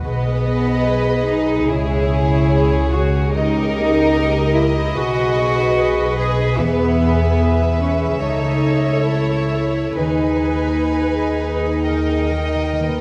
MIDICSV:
0, 0, Header, 1, 9, 480
1, 0, Start_track
1, 0, Key_signature, 5, "minor"
1, 0, Tempo, 817439
1, 27, Time_signature, 4, 2, 24, 8
1, 4827, Tempo, 853485
1, 5307, Tempo, 911854
1, 5787, Tempo, 941915
1, 7327, End_track
2, 0, Start_track
2, 0, Title_t, "Violin section"
2, 0, Program_c, 0, 48
2, 25, Note_on_c, 0, 75, 63
2, 968, Note_off_c, 0, 75, 0
2, 998, Note_on_c, 0, 73, 69
2, 1937, Note_off_c, 0, 73, 0
2, 1971, Note_on_c, 0, 75, 75
2, 3850, Note_off_c, 0, 75, 0
2, 3861, Note_on_c, 0, 76, 62
2, 5764, Note_off_c, 0, 76, 0
2, 5782, Note_on_c, 0, 80, 50
2, 6722, Note_off_c, 0, 80, 0
2, 6733, Note_on_c, 0, 79, 48
2, 7327, Note_off_c, 0, 79, 0
2, 7327, End_track
3, 0, Start_track
3, 0, Title_t, "Violin section"
3, 0, Program_c, 1, 48
3, 26, Note_on_c, 1, 71, 70
3, 968, Note_off_c, 1, 71, 0
3, 988, Note_on_c, 1, 68, 60
3, 1932, Note_off_c, 1, 68, 0
3, 1954, Note_on_c, 1, 70, 78
3, 2883, Note_off_c, 1, 70, 0
3, 2908, Note_on_c, 1, 71, 64
3, 4804, Note_off_c, 1, 71, 0
3, 4820, Note_on_c, 1, 73, 57
3, 5763, Note_off_c, 1, 73, 0
3, 5772, Note_on_c, 1, 71, 55
3, 6717, Note_off_c, 1, 71, 0
3, 6744, Note_on_c, 1, 75, 47
3, 7327, Note_off_c, 1, 75, 0
3, 7327, End_track
4, 0, Start_track
4, 0, Title_t, "French horn section"
4, 0, Program_c, 2, 60
4, 40, Note_on_c, 2, 68, 64
4, 44, Note_on_c, 2, 75, 75
4, 975, Note_off_c, 2, 68, 0
4, 977, Note_off_c, 2, 75, 0
4, 1001, Note_on_c, 2, 73, 68
4, 1003, Note_on_c, 2, 68, 68
4, 1944, Note_off_c, 2, 68, 0
4, 1963, Note_off_c, 2, 73, 0
4, 1971, Note_on_c, 2, 75, 78
4, 1974, Note_on_c, 2, 67, 75
4, 2896, Note_off_c, 2, 75, 0
4, 2897, Note_off_c, 2, 67, 0
4, 2909, Note_on_c, 2, 68, 70
4, 2917, Note_on_c, 2, 75, 64
4, 3778, Note_off_c, 2, 68, 0
4, 3778, Note_off_c, 2, 75, 0
4, 3878, Note_on_c, 2, 76, 69
4, 3881, Note_on_c, 2, 68, 73
4, 4814, Note_off_c, 2, 76, 0
4, 4816, Note_off_c, 2, 68, 0
4, 4826, Note_on_c, 2, 69, 52
4, 4830, Note_on_c, 2, 73, 56
4, 5290, Note_off_c, 2, 73, 0
4, 5291, Note_off_c, 2, 69, 0
4, 5297, Note_on_c, 2, 73, 54
4, 5298, Note_on_c, 2, 69, 55
4, 5773, Note_off_c, 2, 73, 0
4, 5774, Note_off_c, 2, 69, 0
4, 5782, Note_on_c, 2, 68, 55
4, 5787, Note_on_c, 2, 71, 51
4, 6212, Note_off_c, 2, 68, 0
4, 6214, Note_off_c, 2, 71, 0
4, 6260, Note_on_c, 2, 68, 58
4, 6967, Note_off_c, 2, 68, 0
4, 6986, Note_on_c, 2, 70, 54
4, 7222, Note_off_c, 2, 70, 0
4, 7235, Note_on_c, 2, 71, 51
4, 7327, Note_off_c, 2, 71, 0
4, 7327, End_track
5, 0, Start_track
5, 0, Title_t, "Viola section"
5, 0, Program_c, 3, 48
5, 23, Note_on_c, 3, 68, 63
5, 1933, Note_off_c, 3, 68, 0
5, 1954, Note_on_c, 3, 67, 71
5, 2883, Note_off_c, 3, 67, 0
5, 2903, Note_on_c, 3, 68, 70
5, 4802, Note_off_c, 3, 68, 0
5, 4821, Note_on_c, 3, 69, 66
5, 5764, Note_off_c, 3, 69, 0
5, 5779, Note_on_c, 3, 71, 60
5, 6720, Note_off_c, 3, 71, 0
5, 6739, Note_on_c, 3, 70, 51
5, 7327, Note_off_c, 3, 70, 0
5, 7327, End_track
6, 0, Start_track
6, 0, Title_t, "Harp"
6, 0, Program_c, 4, 46
6, 0, Note_on_c, 4, 59, 44
6, 0, Note_on_c, 4, 63, 53
6, 0, Note_on_c, 4, 71, 47
6, 0, Note_on_c, 4, 75, 53
6, 25, Note_on_c, 4, 47, 73
6, 148, Note_on_c, 4, 56, 46
6, 253, Note_off_c, 4, 59, 0
6, 260, Note_on_c, 4, 59, 52
6, 381, Note_off_c, 4, 63, 0
6, 388, Note_on_c, 4, 63, 51
6, 507, Note_on_c, 4, 68, 54
6, 614, Note_off_c, 4, 71, 0
6, 621, Note_on_c, 4, 71, 51
6, 739, Note_off_c, 4, 68, 0
6, 746, Note_on_c, 4, 68, 56
6, 862, Note_off_c, 4, 63, 0
6, 869, Note_on_c, 4, 63, 54
6, 990, Note_on_c, 4, 49, 66
6, 1008, Note_off_c, 4, 59, 0
6, 1008, Note_off_c, 4, 71, 0
6, 1011, Note_off_c, 4, 47, 0
6, 1011, Note_off_c, 4, 63, 0
6, 1014, Note_off_c, 4, 75, 0
6, 1112, Note_off_c, 4, 56, 0
6, 1119, Note_on_c, 4, 56, 48
6, 1235, Note_on_c, 4, 61, 54
6, 1345, Note_off_c, 4, 68, 0
6, 1352, Note_on_c, 4, 68, 46
6, 1472, Note_off_c, 4, 61, 0
6, 1480, Note_on_c, 4, 61, 52
6, 1597, Note_on_c, 4, 73, 60
6, 1718, Note_off_c, 4, 68, 0
6, 1725, Note_on_c, 4, 68, 56
6, 1841, Note_off_c, 4, 61, 0
6, 1848, Note_on_c, 4, 61, 58
6, 1960, Note_off_c, 4, 49, 0
6, 1967, Note_on_c, 4, 49, 73
6, 1980, Note_off_c, 4, 56, 0
6, 1981, Note_off_c, 4, 68, 0
6, 2093, Note_on_c, 4, 55, 48
6, 2206, Note_on_c, 4, 58, 54
6, 2446, Note_on_c, 4, 67, 59
6, 2563, Note_on_c, 4, 70, 55
6, 2671, Note_off_c, 4, 67, 0
6, 2678, Note_on_c, 4, 67, 58
6, 2800, Note_on_c, 4, 63, 61
6, 2918, Note_on_c, 4, 47, 70
6, 2928, Note_off_c, 4, 73, 0
6, 2932, Note_off_c, 4, 49, 0
6, 2932, Note_off_c, 4, 58, 0
6, 2932, Note_off_c, 4, 67, 0
6, 2933, Note_off_c, 4, 61, 0
6, 2934, Note_off_c, 4, 70, 0
6, 2935, Note_off_c, 4, 55, 0
6, 3041, Note_on_c, 4, 56, 47
6, 3162, Note_on_c, 4, 59, 57
6, 3271, Note_off_c, 4, 63, 0
6, 3278, Note_on_c, 4, 63, 47
6, 3395, Note_on_c, 4, 68, 55
6, 3512, Note_on_c, 4, 71, 56
6, 3624, Note_off_c, 4, 68, 0
6, 3631, Note_on_c, 4, 68, 56
6, 3742, Note_off_c, 4, 63, 0
6, 3749, Note_on_c, 4, 63, 49
6, 3866, Note_on_c, 4, 52, 69
6, 3887, Note_off_c, 4, 63, 0
6, 3891, Note_off_c, 4, 47, 0
6, 3980, Note_off_c, 4, 59, 0
6, 3987, Note_on_c, 4, 59, 45
6, 4108, Note_on_c, 4, 64, 46
6, 4226, Note_off_c, 4, 68, 0
6, 4233, Note_on_c, 4, 68, 45
6, 4345, Note_off_c, 4, 71, 0
6, 4352, Note_on_c, 4, 71, 50
6, 4467, Note_on_c, 4, 76, 53
6, 4575, Note_off_c, 4, 71, 0
6, 4582, Note_on_c, 4, 71, 49
6, 4700, Note_off_c, 4, 68, 0
6, 4707, Note_on_c, 4, 68, 46
6, 4826, Note_on_c, 4, 49, 60
6, 4846, Note_off_c, 4, 52, 0
6, 4846, Note_off_c, 4, 71, 0
6, 4847, Note_off_c, 4, 59, 0
6, 4847, Note_off_c, 4, 68, 0
6, 4853, Note_off_c, 4, 56, 0
6, 4954, Note_on_c, 4, 57, 44
6, 5067, Note_on_c, 4, 61, 47
6, 5182, Note_off_c, 4, 64, 0
6, 5188, Note_on_c, 4, 64, 45
6, 5304, Note_on_c, 4, 69, 45
6, 5424, Note_on_c, 4, 73, 48
6, 5535, Note_off_c, 4, 69, 0
6, 5541, Note_on_c, 4, 69, 42
6, 5652, Note_off_c, 4, 64, 0
6, 5658, Note_on_c, 4, 64, 41
6, 5785, Note_on_c, 4, 51, 57
6, 5804, Note_off_c, 4, 64, 0
6, 5806, Note_off_c, 4, 49, 0
6, 5806, Note_off_c, 4, 69, 0
6, 5807, Note_off_c, 4, 73, 0
6, 5808, Note_off_c, 4, 61, 0
6, 5808, Note_off_c, 4, 76, 0
6, 5811, Note_off_c, 4, 57, 0
6, 5905, Note_on_c, 4, 63, 36
6, 6028, Note_on_c, 4, 56, 36
6, 6148, Note_on_c, 4, 68, 37
6, 6271, Note_on_c, 4, 71, 42
6, 6379, Note_off_c, 4, 68, 0
6, 6385, Note_on_c, 4, 68, 39
6, 6503, Note_off_c, 4, 71, 0
6, 6509, Note_on_c, 4, 71, 43
6, 6624, Note_off_c, 4, 68, 0
6, 6630, Note_on_c, 4, 68, 42
6, 6748, Note_off_c, 4, 51, 0
6, 6754, Note_on_c, 4, 51, 47
6, 6765, Note_off_c, 4, 56, 0
6, 6769, Note_off_c, 4, 68, 0
6, 6769, Note_off_c, 4, 71, 0
6, 6865, Note_off_c, 4, 63, 0
6, 6871, Note_on_c, 4, 63, 39
6, 6996, Note_on_c, 4, 58, 38
6, 7113, Note_on_c, 4, 67, 35
6, 7233, Note_on_c, 4, 70, 36
6, 7327, Note_off_c, 4, 51, 0
6, 7327, Note_off_c, 4, 58, 0
6, 7327, Note_off_c, 4, 63, 0
6, 7327, Note_off_c, 4, 67, 0
6, 7327, Note_off_c, 4, 70, 0
6, 7327, End_track
7, 0, Start_track
7, 0, Title_t, "Cello section"
7, 0, Program_c, 5, 48
7, 26, Note_on_c, 5, 59, 85
7, 725, Note_off_c, 5, 59, 0
7, 751, Note_on_c, 5, 63, 78
7, 991, Note_on_c, 5, 64, 85
7, 993, Note_off_c, 5, 63, 0
7, 1716, Note_off_c, 5, 64, 0
7, 1716, Note_on_c, 5, 66, 73
7, 1957, Note_on_c, 5, 63, 97
7, 1958, Note_off_c, 5, 66, 0
7, 2654, Note_off_c, 5, 63, 0
7, 2671, Note_on_c, 5, 64, 78
7, 2909, Note_off_c, 5, 64, 0
7, 2910, Note_on_c, 5, 66, 95
7, 3627, Note_on_c, 5, 68, 83
7, 3628, Note_off_c, 5, 66, 0
7, 3862, Note_off_c, 5, 68, 0
7, 3870, Note_on_c, 5, 59, 95
7, 4586, Note_off_c, 5, 59, 0
7, 4586, Note_on_c, 5, 61, 74
7, 4828, Note_off_c, 5, 61, 0
7, 4828, Note_on_c, 5, 63, 78
7, 5298, Note_off_c, 5, 63, 0
7, 5306, Note_on_c, 5, 64, 82
7, 5778, Note_off_c, 5, 64, 0
7, 5783, Note_on_c, 5, 63, 73
7, 7327, Note_off_c, 5, 63, 0
7, 7327, End_track
8, 0, Start_track
8, 0, Title_t, "Timpani"
8, 0, Program_c, 6, 47
8, 6750, Note_on_c, 6, 51, 31
8, 6785, Note_off_c, 6, 51, 0
8, 6791, Note_on_c, 6, 51, 30
8, 6830, Note_off_c, 6, 51, 0
8, 6836, Note_on_c, 6, 51, 30
8, 6874, Note_off_c, 6, 51, 0
8, 6923, Note_on_c, 6, 51, 32
8, 6961, Note_off_c, 6, 51, 0
8, 6969, Note_on_c, 6, 51, 33
8, 7005, Note_off_c, 6, 51, 0
8, 7011, Note_on_c, 6, 51, 33
8, 7048, Note_off_c, 6, 51, 0
8, 7096, Note_on_c, 6, 51, 38
8, 7133, Note_off_c, 6, 51, 0
8, 7185, Note_on_c, 6, 51, 41
8, 7218, Note_off_c, 6, 51, 0
8, 7224, Note_on_c, 6, 51, 48
8, 7260, Note_off_c, 6, 51, 0
8, 7268, Note_on_c, 6, 51, 51
8, 7304, Note_off_c, 6, 51, 0
8, 7327, End_track
9, 0, Start_track
9, 0, Title_t, "Double bass section"
9, 0, Program_c, 7, 48
9, 24, Note_on_c, 7, 35, 66
9, 967, Note_off_c, 7, 35, 0
9, 994, Note_on_c, 7, 37, 73
9, 2901, Note_on_c, 7, 35, 65
9, 2909, Note_off_c, 7, 37, 0
9, 3863, Note_off_c, 7, 35, 0
9, 3864, Note_on_c, 7, 40, 70
9, 4822, Note_on_c, 7, 37, 54
9, 4827, Note_off_c, 7, 40, 0
9, 5767, Note_off_c, 7, 37, 0
9, 5785, Note_on_c, 7, 39, 52
9, 7327, Note_off_c, 7, 39, 0
9, 7327, End_track
0, 0, End_of_file